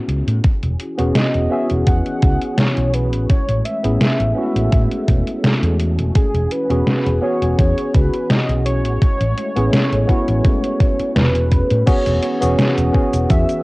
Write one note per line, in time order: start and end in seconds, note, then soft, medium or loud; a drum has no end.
0.00 0.46 B3 medium
0.00 0.46 C#4 medium
0.00 0.46 E4 medium
0.00 0.43 F#4 medium
0.00 0.47 G#4 medium
0.08 0.21 C#2 loud
0.08 closed hi-hat medium
0.27 0.39 A2 loud
0.27 closed hi-hat soft
0.43 3.27 E3 medium
0.43 8.97 C#4 medium
0.43 3.27 F#4 medium
0.43 3.27 G#4 medium
0.43 kick loud
0.43 closed hi-hat medium
0.63 0.74 E1 medium
0.63 closed hi-hat soft
0.80 closed hi-hat medium
0.98 1.10 E1 medium
0.98 1.47 B3 medium
0.98 1.47 C#4 medium
0.98 1.48 F#4 medium
0.98 1.48 G#4 medium
0.98 closed hi-hat soft
1.15 1.49 D#5 loud
1.15 snare loud
1.15 closed hi-hat medium
1.34 1.46 E1 medium
1.34 closed hi-hat soft
1.50 3.27 B3 medium
1.50 3.28 C#4 medium
1.50 3.28 F#4 medium
1.50 3.29 G#4 medium
1.50 1.65 E5 loud
1.70 1.82 E1 medium
1.70 closed hi-hat soft
1.87 2.00 E2 medium
1.87 2.60 F#5 loud
1.87 kick loud
1.87 closed hi-hat medium
2.06 closed hi-hat soft
2.22 2.36 C#2 medium
2.22 kick loud
2.22 closed hi-hat medium
2.42 closed hi-hat soft
2.58 2.95 C#5 loud
2.58 snare loud
2.58 closed hi-hat medium
2.77 3.13 B1 medium
2.77 closed hi-hat soft
2.94 3.29 B4 loud
2.94 closed hi-hat medium
3.13 3.29 A1 medium
3.13 closed hi-hat soft
3.30 6.13 G#3 medium
3.30 6.13 A3 medium
3.30 3.66 C#5 loud
3.30 kick loud
3.30 closed hi-hat medium
3.49 3.60 A1 medium
3.49 closed hi-hat soft
3.65 5.80 E5 loud
3.65 closed hi-hat medium
3.83 3.96 A1 medium
3.83 3.99 B3 medium
3.83 3.99 C#4 medium
3.83 3.99 E4 medium
3.83 4.00 G#4 medium
3.83 closed hi-hat soft
4.01 snare loud
4.01 closed hi-hat medium
4.20 4.31 A1 loud
4.20 closed hi-hat soft
4.35 6.13 B3 medium
4.35 6.13 C#4 medium
4.35 6.14 E4 medium
4.35 6.14 F#4 medium
4.55 4.67 A1 medium
4.55 closed hi-hat soft
4.72 4.86 A2 medium
4.72 kick loud
4.72 closed hi-hat medium
4.91 closed hi-hat soft
5.08 5.21 E1 medium
5.08 kick loud
5.08 closed hi-hat medium
5.27 closed hi-hat soft
5.44 snare loud
5.44 closed hi-hat medium
5.62 6.00 E2 medium
5.62 closed hi-hat soft
5.80 closed hi-hat medium
5.98 6.15 E1 medium
5.98 closed hi-hat soft
6.15 8.99 E3 medium
6.15 8.98 F#4 medium
6.15 8.98 G#4 medium
6.15 6.53 G#4 loud
6.15 kick loud
6.15 closed hi-hat medium
6.34 6.46 E1 loud
6.34 closed hi-hat soft
6.51 7.22 B4 loud
6.51 closed hi-hat medium
6.70 6.81 E1 medium
6.70 7.19 B3 medium
6.70 7.19 C#4 medium
6.70 7.19 F#4 medium
6.70 7.19 G#4 loud
6.70 closed hi-hat soft
6.87 snare loud
6.87 closed hi-hat medium
7.06 7.17 E1 loud
7.06 closed hi-hat soft
7.21 8.99 B3 medium
7.21 8.99 C#4 medium
7.21 9.00 F#4 medium
7.21 9.00 G#4 medium
7.21 7.56 C#5 loud
7.42 7.53 E1 medium
7.42 closed hi-hat soft
7.58 7.71 E2 medium
7.58 7.95 C#5 loud
7.58 kick loud
7.58 closed hi-hat medium
7.78 closed hi-hat soft
7.94 8.07 C#2 medium
7.94 8.32 B4 loud
7.94 kick loud
7.94 closed hi-hat medium
8.14 closed hi-hat soft
8.30 8.65 D#5 loud
8.30 snare loud
8.30 closed hi-hat medium
8.49 8.85 B1 medium
8.49 closed hi-hat soft
8.66 11.12 C#5 loud
8.66 closed hi-hat medium
8.85 9.01 A1 medium
8.85 closed hi-hat soft
9.02 11.85 G#3 medium
9.02 11.85 A3 medium
9.02 11.85 C#4 medium
9.02 kick loud
9.02 closed hi-hat medium
9.20 9.32 A1 loud
9.20 closed hi-hat soft
9.38 closed hi-hat medium
9.56 9.68 A1 medium
9.56 9.71 B3 medium
9.56 9.71 C#4 medium
9.56 9.72 E4 medium
9.56 9.72 G#4 medium
9.56 closed hi-hat soft
9.73 snare loud
9.73 closed hi-hat medium
9.92 10.03 A1 loud
9.92 closed hi-hat soft
10.07 11.85 B3 medium
10.07 11.85 C#4 medium
10.07 11.86 E4 medium
10.07 11.86 F#4 medium
10.07 kick medium
10.07 closed hi-hat soft
10.28 10.39 A1 medium
10.28 closed hi-hat soft
10.44 kick loud
10.44 closed hi-hat medium
10.64 closed hi-hat soft
10.80 kick loud
10.80 closed hi-hat medium
10.99 muted fretless electric bass stroke soft
10.99 closed hi-hat soft
11.15 11.61 E1 medium
11.15 11.83 B4 loud
11.15 snare loud
11.15 closed hi-hat medium
11.35 closed hi-hat soft
11.51 kick medium
11.51 closed hi-hat medium
11.70 11.82 A2 medium
11.70 closed hi-hat soft
11.86 13.63 E3 medium
11.86 12.34 B3 loud
11.86 12.34 C#4 medium
11.86 13.63 C#4 medium
11.86 12.35 F#4 medium
11.86 13.63 F#4 medium
11.86 13.63 G#4 medium
11.86 12.35 G#4 loud
11.86 12.20 C#5 loud
11.86 kick loud
11.86 closed hi-hat medium
11.86 crash loud
11.86 cabasa soft
12.06 12.18 E1 loud
12.06 closed hi-hat soft
12.06 cabasa soft
12.22 12.90 C#5 loud
12.22 closed hi-hat medium
12.41 12.53 E1 medium
12.41 12.90 B3 medium
12.41 12.90 C#4 medium
12.41 12.90 F#4 medium
12.41 12.91 G#4 loud
12.41 closed hi-hat soft
12.41 cabasa medium
12.59 snare loud
12.59 closed hi-hat medium
12.59 cabasa soft
12.78 12.89 E1 loud
12.78 closed hi-hat soft
12.78 cabasa soft
12.92 13.63 B3 medium
12.92 13.63 C#4 medium
12.92 13.63 F#4 medium
12.92 13.63 G#4 medium
12.92 kick medium
13.13 13.25 E1 medium
13.13 closed hi-hat soft
13.13 cabasa medium
13.30 13.43 E2 medium
13.30 13.63 E5 loud
13.30 kick loud
13.30 closed hi-hat medium
13.30 cabasa soft
13.49 closed hi-hat soft
13.49 cabasa soft